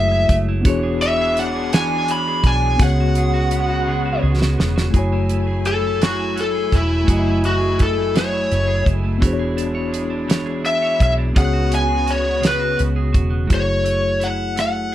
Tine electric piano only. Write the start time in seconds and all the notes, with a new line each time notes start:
Already playing: G#3 A3 E4 F#4 G#4 C#5
0.61 B3 D4
0.66 F#4 G#4
0.70 C#5
2.76 B3 C#4
2.80 F#4 G#4
2.84 C#5
4.90 A3 E4
4.95 F#4 G#5
4.99 C#5
7.04 A3 E4
7.08 F#4 G#5
7.13 D#5
7.19 E5
9.18 B3 D4
9.22 F#4 G#4
9.27 C5
9.33 C#5
11.33 B3 C#4 F#4
11.39 G#4 C#5
13.47 A3 E4
13.51 F#4 G#4
13.55 C#5